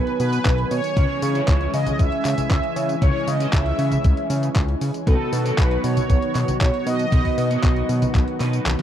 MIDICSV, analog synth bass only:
0, 0, Header, 1, 2, 480
1, 0, Start_track
1, 0, Key_signature, 4, "minor"
1, 0, Tempo, 512821
1, 906, Time_signature, 4, 2, 24, 8
1, 8256, End_track
2, 0, Start_track
2, 0, Title_t, "Analog synth bass"
2, 0, Program_c, 0, 38
2, 185, Note_on_c, 0, 47, 104
2, 368, Note_off_c, 0, 47, 0
2, 425, Note_on_c, 0, 35, 99
2, 608, Note_off_c, 0, 35, 0
2, 665, Note_on_c, 0, 47, 83
2, 757, Note_off_c, 0, 47, 0
2, 905, Note_on_c, 0, 37, 99
2, 997, Note_off_c, 0, 37, 0
2, 1146, Note_on_c, 0, 49, 103
2, 1328, Note_off_c, 0, 49, 0
2, 1386, Note_on_c, 0, 37, 94
2, 1568, Note_off_c, 0, 37, 0
2, 1627, Note_on_c, 0, 49, 92
2, 1809, Note_off_c, 0, 49, 0
2, 1866, Note_on_c, 0, 37, 100
2, 1957, Note_off_c, 0, 37, 0
2, 2106, Note_on_c, 0, 49, 96
2, 2197, Note_off_c, 0, 49, 0
2, 2346, Note_on_c, 0, 37, 87
2, 2437, Note_off_c, 0, 37, 0
2, 2585, Note_on_c, 0, 49, 90
2, 2768, Note_off_c, 0, 49, 0
2, 2826, Note_on_c, 0, 37, 99
2, 2917, Note_off_c, 0, 37, 0
2, 3064, Note_on_c, 0, 49, 104
2, 3248, Note_off_c, 0, 49, 0
2, 3305, Note_on_c, 0, 37, 98
2, 3488, Note_off_c, 0, 37, 0
2, 3544, Note_on_c, 0, 49, 91
2, 3728, Note_off_c, 0, 49, 0
2, 3785, Note_on_c, 0, 37, 85
2, 3877, Note_off_c, 0, 37, 0
2, 4024, Note_on_c, 0, 49, 104
2, 4208, Note_off_c, 0, 49, 0
2, 4265, Note_on_c, 0, 37, 105
2, 4448, Note_off_c, 0, 37, 0
2, 4505, Note_on_c, 0, 49, 83
2, 4597, Note_off_c, 0, 49, 0
2, 4745, Note_on_c, 0, 35, 102
2, 4837, Note_off_c, 0, 35, 0
2, 4984, Note_on_c, 0, 47, 103
2, 5168, Note_off_c, 0, 47, 0
2, 5226, Note_on_c, 0, 35, 95
2, 5408, Note_off_c, 0, 35, 0
2, 5465, Note_on_c, 0, 47, 92
2, 5648, Note_off_c, 0, 47, 0
2, 5706, Note_on_c, 0, 35, 99
2, 5797, Note_off_c, 0, 35, 0
2, 5946, Note_on_c, 0, 47, 98
2, 6037, Note_off_c, 0, 47, 0
2, 6185, Note_on_c, 0, 35, 86
2, 6277, Note_off_c, 0, 35, 0
2, 6426, Note_on_c, 0, 47, 94
2, 6608, Note_off_c, 0, 47, 0
2, 6666, Note_on_c, 0, 35, 98
2, 6757, Note_off_c, 0, 35, 0
2, 6905, Note_on_c, 0, 47, 104
2, 7088, Note_off_c, 0, 47, 0
2, 7146, Note_on_c, 0, 35, 98
2, 7329, Note_off_c, 0, 35, 0
2, 7385, Note_on_c, 0, 47, 95
2, 7568, Note_off_c, 0, 47, 0
2, 7626, Note_on_c, 0, 35, 84
2, 7717, Note_off_c, 0, 35, 0
2, 7865, Note_on_c, 0, 47, 105
2, 8048, Note_off_c, 0, 47, 0
2, 8104, Note_on_c, 0, 35, 84
2, 8196, Note_off_c, 0, 35, 0
2, 8256, End_track
0, 0, End_of_file